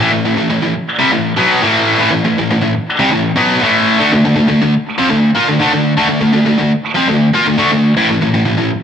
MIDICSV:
0, 0, Header, 1, 2, 480
1, 0, Start_track
1, 0, Key_signature, 0, "minor"
1, 0, Tempo, 498753
1, 1909, Time_signature, 4, 2, 24, 8
1, 8499, End_track
2, 0, Start_track
2, 0, Title_t, "Distorted electric guitar"
2, 0, Program_c, 0, 30
2, 2, Note_on_c, 0, 45, 101
2, 7, Note_on_c, 0, 52, 118
2, 101, Note_off_c, 0, 45, 0
2, 106, Note_off_c, 0, 52, 0
2, 113, Note_on_c, 0, 45, 71
2, 117, Note_on_c, 0, 52, 73
2, 230, Note_off_c, 0, 45, 0
2, 233, Note_off_c, 0, 52, 0
2, 245, Note_on_c, 0, 45, 71
2, 248, Note_on_c, 0, 52, 66
2, 348, Note_off_c, 0, 45, 0
2, 350, Note_off_c, 0, 52, 0
2, 359, Note_on_c, 0, 45, 63
2, 362, Note_on_c, 0, 52, 72
2, 468, Note_off_c, 0, 45, 0
2, 472, Note_off_c, 0, 52, 0
2, 479, Note_on_c, 0, 45, 83
2, 484, Note_on_c, 0, 52, 88
2, 587, Note_off_c, 0, 45, 0
2, 593, Note_off_c, 0, 52, 0
2, 599, Note_on_c, 0, 45, 54
2, 605, Note_on_c, 0, 52, 70
2, 714, Note_off_c, 0, 45, 0
2, 717, Note_off_c, 0, 52, 0
2, 954, Note_on_c, 0, 48, 93
2, 959, Note_on_c, 0, 55, 119
2, 1065, Note_off_c, 0, 48, 0
2, 1067, Note_off_c, 0, 55, 0
2, 1077, Note_on_c, 0, 45, 58
2, 1081, Note_on_c, 0, 52, 73
2, 1265, Note_off_c, 0, 45, 0
2, 1267, Note_off_c, 0, 52, 0
2, 1320, Note_on_c, 0, 47, 81
2, 1325, Note_on_c, 0, 54, 86
2, 1330, Note_on_c, 0, 59, 106
2, 1548, Note_off_c, 0, 47, 0
2, 1550, Note_off_c, 0, 54, 0
2, 1553, Note_off_c, 0, 59, 0
2, 1564, Note_on_c, 0, 45, 103
2, 1575, Note_on_c, 0, 52, 96
2, 1580, Note_on_c, 0, 57, 108
2, 1904, Note_off_c, 0, 45, 0
2, 1915, Note_off_c, 0, 52, 0
2, 1915, Note_on_c, 0, 45, 92
2, 1917, Note_off_c, 0, 57, 0
2, 1927, Note_on_c, 0, 52, 110
2, 2020, Note_off_c, 0, 45, 0
2, 2026, Note_off_c, 0, 52, 0
2, 2031, Note_on_c, 0, 45, 69
2, 2038, Note_on_c, 0, 52, 79
2, 2150, Note_off_c, 0, 45, 0
2, 2154, Note_off_c, 0, 52, 0
2, 2162, Note_on_c, 0, 45, 69
2, 2166, Note_on_c, 0, 52, 73
2, 2276, Note_off_c, 0, 45, 0
2, 2278, Note_off_c, 0, 52, 0
2, 2293, Note_on_c, 0, 45, 68
2, 2297, Note_on_c, 0, 52, 73
2, 2401, Note_off_c, 0, 45, 0
2, 2403, Note_off_c, 0, 52, 0
2, 2411, Note_on_c, 0, 45, 71
2, 2418, Note_on_c, 0, 52, 81
2, 2503, Note_off_c, 0, 45, 0
2, 2508, Note_off_c, 0, 52, 0
2, 2515, Note_on_c, 0, 45, 58
2, 2520, Note_on_c, 0, 52, 59
2, 2632, Note_off_c, 0, 45, 0
2, 2635, Note_off_c, 0, 52, 0
2, 2880, Note_on_c, 0, 48, 103
2, 2893, Note_on_c, 0, 55, 117
2, 2987, Note_off_c, 0, 48, 0
2, 2994, Note_off_c, 0, 55, 0
2, 2999, Note_on_c, 0, 52, 70
2, 3003, Note_on_c, 0, 45, 58
2, 3186, Note_off_c, 0, 52, 0
2, 3188, Note_off_c, 0, 45, 0
2, 3231, Note_on_c, 0, 47, 88
2, 3238, Note_on_c, 0, 54, 89
2, 3244, Note_on_c, 0, 59, 107
2, 3463, Note_off_c, 0, 47, 0
2, 3466, Note_off_c, 0, 54, 0
2, 3469, Note_off_c, 0, 59, 0
2, 3482, Note_on_c, 0, 45, 87
2, 3495, Note_on_c, 0, 52, 100
2, 3499, Note_on_c, 0, 57, 97
2, 3827, Note_off_c, 0, 45, 0
2, 3834, Note_off_c, 0, 52, 0
2, 3836, Note_off_c, 0, 57, 0
2, 3842, Note_on_c, 0, 50, 99
2, 3847, Note_on_c, 0, 57, 95
2, 3947, Note_off_c, 0, 50, 0
2, 3950, Note_off_c, 0, 57, 0
2, 3964, Note_on_c, 0, 50, 70
2, 3977, Note_on_c, 0, 57, 83
2, 4076, Note_off_c, 0, 50, 0
2, 4082, Note_off_c, 0, 57, 0
2, 4089, Note_on_c, 0, 50, 63
2, 4092, Note_on_c, 0, 57, 78
2, 4182, Note_off_c, 0, 50, 0
2, 4182, Note_off_c, 0, 57, 0
2, 4194, Note_on_c, 0, 50, 62
2, 4194, Note_on_c, 0, 57, 72
2, 4301, Note_off_c, 0, 50, 0
2, 4306, Note_off_c, 0, 57, 0
2, 4313, Note_on_c, 0, 50, 73
2, 4317, Note_on_c, 0, 57, 93
2, 4430, Note_off_c, 0, 50, 0
2, 4432, Note_off_c, 0, 57, 0
2, 4442, Note_on_c, 0, 50, 59
2, 4450, Note_on_c, 0, 57, 64
2, 4554, Note_off_c, 0, 50, 0
2, 4558, Note_off_c, 0, 57, 0
2, 4794, Note_on_c, 0, 53, 110
2, 4800, Note_on_c, 0, 60, 110
2, 4898, Note_off_c, 0, 53, 0
2, 4902, Note_on_c, 0, 50, 67
2, 4903, Note_off_c, 0, 60, 0
2, 4907, Note_on_c, 0, 57, 57
2, 5096, Note_off_c, 0, 50, 0
2, 5098, Note_off_c, 0, 57, 0
2, 5145, Note_on_c, 0, 58, 81
2, 5157, Note_on_c, 0, 65, 100
2, 5258, Note_off_c, 0, 58, 0
2, 5264, Note_off_c, 0, 65, 0
2, 5275, Note_on_c, 0, 50, 74
2, 5275, Note_on_c, 0, 57, 77
2, 5374, Note_off_c, 0, 50, 0
2, 5384, Note_off_c, 0, 57, 0
2, 5385, Note_on_c, 0, 50, 86
2, 5396, Note_on_c, 0, 57, 107
2, 5498, Note_off_c, 0, 50, 0
2, 5503, Note_off_c, 0, 57, 0
2, 5515, Note_on_c, 0, 50, 68
2, 5517, Note_on_c, 0, 57, 66
2, 5702, Note_off_c, 0, 50, 0
2, 5703, Note_off_c, 0, 57, 0
2, 5745, Note_on_c, 0, 50, 94
2, 5748, Note_on_c, 0, 57, 120
2, 5841, Note_off_c, 0, 50, 0
2, 5849, Note_off_c, 0, 57, 0
2, 5852, Note_on_c, 0, 50, 73
2, 5860, Note_on_c, 0, 57, 77
2, 5963, Note_off_c, 0, 50, 0
2, 5964, Note_off_c, 0, 57, 0
2, 5975, Note_on_c, 0, 50, 62
2, 5975, Note_on_c, 0, 57, 83
2, 6081, Note_off_c, 0, 50, 0
2, 6090, Note_off_c, 0, 57, 0
2, 6093, Note_on_c, 0, 50, 67
2, 6101, Note_on_c, 0, 57, 77
2, 6204, Note_off_c, 0, 50, 0
2, 6207, Note_off_c, 0, 57, 0
2, 6216, Note_on_c, 0, 50, 74
2, 6218, Note_on_c, 0, 57, 85
2, 6325, Note_off_c, 0, 50, 0
2, 6335, Note_off_c, 0, 57, 0
2, 6336, Note_on_c, 0, 50, 65
2, 6346, Note_on_c, 0, 57, 73
2, 6460, Note_off_c, 0, 50, 0
2, 6465, Note_off_c, 0, 57, 0
2, 6690, Note_on_c, 0, 53, 93
2, 6705, Note_on_c, 0, 60, 118
2, 6810, Note_off_c, 0, 53, 0
2, 6817, Note_off_c, 0, 60, 0
2, 6822, Note_on_c, 0, 50, 65
2, 6824, Note_on_c, 0, 57, 63
2, 7015, Note_off_c, 0, 50, 0
2, 7016, Note_off_c, 0, 57, 0
2, 7066, Note_on_c, 0, 58, 79
2, 7072, Note_on_c, 0, 65, 98
2, 7178, Note_off_c, 0, 58, 0
2, 7180, Note_off_c, 0, 65, 0
2, 7183, Note_on_c, 0, 50, 65
2, 7188, Note_on_c, 0, 57, 75
2, 7283, Note_off_c, 0, 50, 0
2, 7294, Note_off_c, 0, 57, 0
2, 7295, Note_on_c, 0, 50, 87
2, 7306, Note_on_c, 0, 57, 101
2, 7412, Note_off_c, 0, 50, 0
2, 7418, Note_off_c, 0, 57, 0
2, 7425, Note_on_c, 0, 50, 66
2, 7431, Note_on_c, 0, 57, 72
2, 7617, Note_off_c, 0, 50, 0
2, 7620, Note_off_c, 0, 57, 0
2, 7670, Note_on_c, 0, 45, 95
2, 7673, Note_on_c, 0, 52, 125
2, 7780, Note_off_c, 0, 45, 0
2, 7781, Note_off_c, 0, 52, 0
2, 7794, Note_on_c, 0, 52, 75
2, 7795, Note_on_c, 0, 45, 78
2, 7894, Note_off_c, 0, 45, 0
2, 7901, Note_off_c, 0, 52, 0
2, 7906, Note_on_c, 0, 45, 62
2, 7913, Note_on_c, 0, 52, 75
2, 8014, Note_off_c, 0, 52, 0
2, 8018, Note_off_c, 0, 45, 0
2, 8025, Note_on_c, 0, 52, 79
2, 8029, Note_on_c, 0, 45, 71
2, 8122, Note_off_c, 0, 45, 0
2, 8128, Note_off_c, 0, 52, 0
2, 8134, Note_on_c, 0, 45, 73
2, 8139, Note_on_c, 0, 52, 85
2, 8236, Note_off_c, 0, 45, 0
2, 8242, Note_off_c, 0, 52, 0
2, 8248, Note_on_c, 0, 45, 64
2, 8253, Note_on_c, 0, 52, 62
2, 8377, Note_off_c, 0, 45, 0
2, 8379, Note_off_c, 0, 52, 0
2, 8499, End_track
0, 0, End_of_file